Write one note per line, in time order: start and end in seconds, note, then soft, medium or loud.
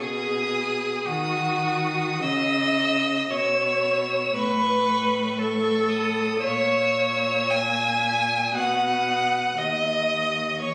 0.00 1.05 B2 medium
0.00 1.08 G#4 medium
0.00 1.05 D#6 medium
1.05 2.21 D#3 medium
1.05 2.22 F#4 medium
1.05 2.23 F#4 medium
1.05 2.23 D#6 medium
2.22 3.27 C#3 medium
2.22 3.31 D#5 loud
2.22 3.32 D#5 loud
2.22 3.28 E6 medium
3.28 4.32 B2 medium
3.28 4.34 C#5 medium
3.28 4.35 C#5 medium
3.28 4.36 E6 medium
4.34 6.36 A2 medium
4.34 5.40 B4 medium
4.34 5.40 B4 loud
4.34 5.38 C#6 medium
5.38 6.40 A4 loud
5.38 5.90 C#6 medium
5.89 6.42 D#6 medium
6.39 8.50 A#2 medium
6.39 7.51 C#5 loud
6.39 8.54 E6 medium
7.50 8.54 G#5 loud
7.50 8.56 G#5 loud
8.54 9.55 B2 medium
8.54 9.60 F#5 loud
8.54 9.60 F#5 medium
8.54 9.55 D#6 medium
9.57 10.62 D#2 medium
9.57 10.61 D#5 medium
9.57 10.61 D#5 loud
9.57 10.59 D#6 medium
10.60 10.74 E2 medium
10.60 10.74 C#5 medium
10.60 10.74 C#5 loud
10.60 10.74 C#6 medium